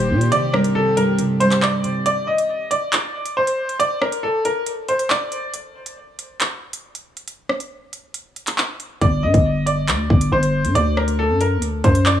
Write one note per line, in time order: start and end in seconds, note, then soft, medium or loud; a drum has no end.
0.00 0.12 D#1 loud
0.00 0.10 D#3 loud
0.00 2.02 D#3 medium
0.00 0.30 A#3 medium
0.00 0.34 A#3 medium
0.00 2.02 G4 medium
0.00 0.29 C5 medium
0.10 0.31 A#2 loud
0.10 0.32 D#3 medium
0.21 closed hi-hat medium
0.32 0.74 C3 loud
0.32 2.04 C4 medium
0.32 0.52 D5 loud
0.32 closed hi-hat medium
0.53 0.96 G3 medium
0.53 0.74 A#4 medium
0.53 cross-stick loud
0.64 closed hi-hat medium
0.75 1.18 C3 medium
0.75 0.95 A4 medium
0.97 1.40 G3 medium
0.97 1.17 A#4 medium
0.97 closed hi-hat medium
1.19 1.83 C3 loud
1.19 closed hi-hat medium
1.40 2.06 G3 medium
1.40 1.61 C5 medium
1.40 closed hi-hat medium
1.51 clap medium
1.51 closed hi-hat medium
1.62 2.03 D5 medium
1.62 clap loud
1.84 2.06 C3 medium
1.84 closed hi-hat medium
2.06 2.26 D5 loud
2.06 closed hi-hat medium
2.27 2.68 D#5 medium
2.38 closed hi-hat medium
2.71 3.32 D5 medium
2.71 closed hi-hat medium
2.93 clap loud
2.93 closed hi-hat medium
3.26 closed hi-hat medium
3.37 3.77 C5 medium
3.47 closed hi-hat medium
3.69 closed hi-hat medium
3.80 4.00 D5 loud
3.80 closed hi-hat medium
4.01 4.21 A#4 medium
4.01 cross-stick loud
4.12 closed hi-hat medium
4.23 4.43 A4 medium
4.45 4.65 A#4 medium
4.45 closed hi-hat medium
4.66 closed hi-hat medium
4.88 5.09 C5 medium
4.88 closed hi-hat medium
4.99 closed hi-hat medium
5.10 5.51 D5 medium
5.10 clap loud
5.32 closed hi-hat medium
5.54 closed hi-hat medium
5.86 closed hi-hat medium
6.19 closed hi-hat medium
6.40 clap loud
6.40 closed hi-hat medium
6.73 closed hi-hat medium
6.95 closed hi-hat medium
7.17 closed hi-hat medium
7.28 closed hi-hat medium
7.49 cross-stick loud
7.60 closed hi-hat medium
7.93 closed hi-hat medium
8.14 closed hi-hat medium
8.36 closed hi-hat medium
8.47 clap medium
8.47 closed hi-hat medium
8.58 clap loud
8.80 closed hi-hat medium
9.01 9.25 G1 loud
9.01 9.22 D5 loud
9.01 kick loud
9.01 closed hi-hat medium
9.23 9.34 G2 loud
9.23 9.64 D#5 medium
9.34 9.90 G1 loud
9.34 kick medium
9.34 closed hi-hat medium
9.66 10.28 D5 medium
9.66 closed hi-hat medium
9.88 10.09 D2 loud
9.88 clap loud
9.88 closed hi-hat medium
10.10 10.31 G1 loud
10.10 kick medium
10.21 closed hi-hat medium
10.32 10.66 G1 loud
10.32 10.73 C5 medium
10.43 closed hi-hat medium
10.65 10.75 G2 medium
10.65 closed hi-hat medium
10.75 11.31 D2 loud
10.75 10.95 D5 loud
10.75 closed hi-hat medium
10.97 11.17 A#4 medium
10.97 cross-stick loud
11.08 closed hi-hat medium
11.19 11.39 A4 medium
11.30 11.58 F#2 loud
11.41 11.61 A#4 medium
11.41 closed hi-hat medium
11.57 11.83 D2 loud
11.62 closed hi-hat medium
11.84 12.20 F#2 loud
11.84 12.04 C5 medium
11.84 kick medium
11.84 closed hi-hat medium
11.95 closed hi-hat medium
12.06 12.20 D5 medium
12.06 clap loud